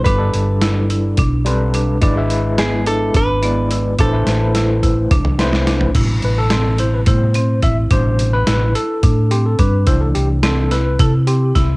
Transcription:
<<
  \new Staff \with { instrumentName = "Hollow-body jazz guitar" } { \time 7/8 \key a \minor \tempo 4 = 107 b'2 r4. | r4 gis'8 a'8 b'4. | a'2. r8 | r2. r8 |
r2. r8 | r2. r8 | }
  \new Staff \with { instrumentName = "Tine electric piano" } { \time 7/8 \key a \minor <g d' a' b'>16 <g d' a' d''>4.~ <g d' a' d''>16 r8 <g d' a' b'>4 | <gis e' b' d''>16 <gis e' b' e''>4.~ <gis e' b' e''>16 r8 <gis e' b' d''>4 | <a e' b' c''>16 <a e' b' c''>4.~ <a e' b' c''>16 r8 <a e' b' c''>4 | r8 b'16 a'8. c''16 b'16 c''4 e''8 |
c''8. b'8. a'4 g'16 a'16 b'8 | c''16 a'16 g'8 a'8 b'8 a'8 g'8 e'8 | }
  \new Staff \with { instrumentName = "Tine electric piano" } { \clef bass \time 7/8 \key a \minor r2. r8 | r2. r8 | r2. r8 | <b, c g>2 <c g b>8 r4 |
<b, c g>4. r2 | <e a d'>4. r2 | }
  \new Staff \with { instrumentName = "Marimba" } { \time 7/8 \key a \minor d'4 e'8 e'8 d'8 c'8 d'8 | d'4 b8 d'8 d'8 b8 e'8 | d'4 e'8 e'8 d'8 c'8 d'8 | e'4 c'8 e'8 e'8 c'8 e'8 |
d'4 e'8 e'8 d'8 c'8 d'8 | e'4 c'8 e'8 e'8 c'8 e'8 | }
  \new Staff \with { instrumentName = "Fingered electric bass" } { \clef bass \time 7/8 \key a \minor g,,8 g,,4. b,,4. | gis,,2 gis,,4. | a,,8 a,,4. c,4. | a,,8 a,,4. a,4 a,,8 |
a,,4 a,,8 r8 a,4 g,8 | c,8 c,4. c4 c,8 | }
  \new DrumStaff \with { instrumentName = "Drums" } \drummode { \time 7/8 <hh bd>8 hh8 <hh sn>8 hh8 <hh bd>8 hh8 hh8 | <hh bd>8 hh8 <hh sn>8 hh8 <hh bd>8 hh8 hh8 | <hh bd>8 <hh sn>8 <hh sn>8 <hh bd>8 <hh bd toml>16 toml16 <hh sn>16 sn16 <hh sn>16 tomfh16 | <cymc hh bd>8 hh8 <hh sn>8 hh8 <hh bd>8 hh8 <hh bd>8 |
<hh bd>8 hh8 <hh sn>8 hh8 <hh bd>8 hh8 <hh bd>8 | <hh bd>8 hh8 <hh sn>8 <hh sn>8 <hh bd>8 hh8 <hh bd sn>8 | }
>>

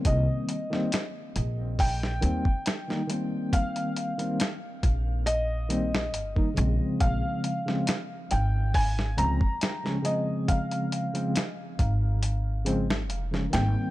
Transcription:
<<
  \new Staff \with { instrumentName = "Felt piano" } { \time 4/4 \key bes \dorian \tempo 4 = 69 ees''2 g''2 | f''4. r8 ees''4. r8 | f''4. g''8 aes''8 bes''4 ees''8 | f''2 r4. g''8 | }
  \new Staff \with { instrumentName = "Tine electric piano" } { \clef bass \time 4/4 \key bes \dorian <ees g bes c'>8. <ees g bes c'>16 r4. <ees g bes c'>16 r8 <ees g bes ees'>16 <ees g bes c'>8~ | <ees g bes c'>8. <ees g bes c'>16 r4. <ees g bes c'>16 r8 <ees g bes ees'>16 <des f aes c'>8~ | <des f aes c'>8. <des f aes c'>16 r4. <des f aes c'>16 r8 <des f aes des'>16 <des f aes c'>8~ | <des f aes c'>8. <des f aes c'>16 r4. <des f aes c'>16 r8 <des f aes des'>16 <ees g bes c'>8 | }
  \new Staff \with { instrumentName = "Upright bass" } { \clef bass \time 4/4 \key bes \dorian c,8 r4 bes,,4 ees,8 r4 | r4. bes,,4. g,,8 bes,,8 | bes,,8 r4 aes,,4 des,8 r4 | r4. aes,,4. f,,8 aes,,8 | }
  \new DrumStaff \with { instrumentName = "Drums" } \drummode { \time 4/4 <hh bd>8 hh16 sn16 <hh sn>8 hh8 <hho bd>16 sn16 hh16 bd16 <hh sn>16 sn16 hh8 | <hh bd>16 hh16 hh16 hh16 <hh sn>8 <hh bd>8 hh8 hh16 sn16 hh16 bd16 hh8 | <hh bd>8 hh16 sn16 <hh sn>8 hh8 <hho bd>16 sn16 hh16 bd16 <hh sn>16 sn16 hh8 | <hh bd>16 hh16 hh16 hh16 <hh sn>8 <hh bd>8 hh8 hh16 sn16 hh16 sn16 <hh sn>8 | }
>>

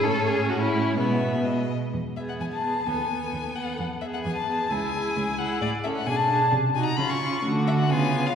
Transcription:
<<
  \new Staff \with { instrumentName = "Violin" } { \time 2/4 \key e \major \tempo 4 = 130 cis''4 cis''4 | e''4 dis''8 r8 | r8 e''16 fis''16 gis''16 a''8. | gis''4. fis''8 |
r8 e''16 fis''16 gis''16 a''8. | gis''4. fis''8 | \key d \lydian d''8 e''16 fis''16 gis''16 a''8. | r8 gis''16 bes''16 b''16 cis'''8. |
r8 e''16 fis''16 gis''8. eis''16 | }
  \new Staff \with { instrumentName = "Violin" } { \time 2/4 \key e \major a'8 gis'8 fis'16 e'8. | b4 r4 | r8 gis'4 gis'8 | a'8 a'4 a'8 |
r8 gis'4 gis'8 | gis'8 gis'4 gis'8 | \key d \lydian r8 a'8 gis'8 gis'8 | r8 ges'8 eis'8 eis'8 |
fis'4 eis'4 | }
  \new Staff \with { instrumentName = "Viola" } { \time 2/4 \key e \major cis'2 | gis4. r8 | r8 b4 b8 | b8 b4 b8 |
r8 b4 b8 | e'8 e'4 e'8 | \key d \lydian r8 cis'8 d'8 d'8 | r8 ees'8 cis'8 cis'8 |
a4 b4 | }
  \new Staff \with { instrumentName = "Cello" } { \clef bass \time 2/4 \key e \major a,2 | b,4. r8 | e,4 e,4 | dis,4 dis,4 |
e,4 e,4 | cis,4 cis,4 | \key d \lydian a,4 b,4 | c4 cis4 |
d4 cis4 | }
>>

